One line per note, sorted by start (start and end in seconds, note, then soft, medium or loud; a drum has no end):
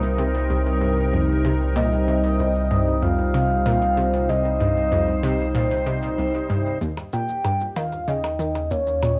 0.00 6.78 C2 medium
0.00 6.81 C3 medium
0.00 6.81 G3 medium
0.00 8.43 D#4 medium
0.00 3.50 A#4 medium
0.00 0.14 C5 medium
0.18 0.40 C3 medium
0.50 0.72 C2 medium
0.81 1.03 G2 medium
1.13 1.35 F2 medium
1.45 1.67 C3 loud
1.76 1.89 A#2 loud
1.76 3.04 D#5 loud
2.08 2.30 C3 medium
2.39 2.61 C2 medium
2.71 2.93 G2 medium
3.02 3.24 F2 medium
3.02 4.30 F5 loud
3.31 3.56 C3 loud
3.31 8.80 C5 medium
3.66 3.79 A#2 loud
3.97 4.19 C3 medium
4.29 4.51 C2 medium
4.29 6.18 D#5 loud
4.60 4.82 G2 medium
4.92 5.14 F2 medium
5.23 5.45 C3 loud
5.55 5.68 A#2 loud
5.87 6.08 C3 medium
6.18 6.40 C2 medium
6.50 6.72 G2 medium
6.81 7.03 D#2 medium
6.81 9.20 D#2 medium
6.81 9.20 D#3 medium
6.81 shaker medium
6.97 percussion blips soft
6.97 shaker soft
7.13 7.35 A#2 medium
7.13 7.78 G5 loud
7.13 shaker medium
7.29 shaker soft
7.33 9.20 A#3 loud
7.45 7.66 G2 medium
7.45 percussion blips medium
7.45 shaker medium
7.60 shaker soft
7.76 7.98 D#3 loud
7.76 8.09 F5 loud
7.76 percussion blips soft
7.76 shaker medium
7.92 shaker soft
8.08 8.21 C#3 medium
8.08 8.72 D#5 loud
8.08 shaker medium
8.24 percussion blips medium
8.24 shaker soft
8.39 8.61 D#3 medium
8.39 shaker medium
8.51 9.20 C#4 medium
8.51 percussion blips soft
8.51 shaker soft
8.71 8.93 D#2 medium
8.71 9.20 C#5 loud
8.71 shaker medium
8.87 shaker soft
9.03 9.20 A#2 medium
9.03 percussion blips medium
9.03 shaker medium